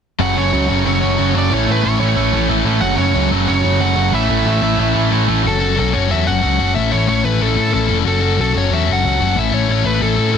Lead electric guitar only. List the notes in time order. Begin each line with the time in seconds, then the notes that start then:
0.21 F#5
0.37 C#5
0.87 C#5
1.38 D5
1.54 C#5
1.72 B4
1.84 C#5
1.99 C#5
2.81 F#5
2.96 C#5
3.48 C#5
3.81 F#5
4.15 E5
5.48 A4
5.79 A4
5.93 C#5
6.11 E5
6.27 F#5
6.75 E5
6.92 C#5
7.09 C#5
7.24 B4
7.42 A4
7.74 A4
8.08 A4
8.41 A4
8.57 C#5
8.74 E5
8.93 F#5
9.39 E5
9.54 C#5
9.72 C#5
9.86 B4
10.03 A4
10.34 A4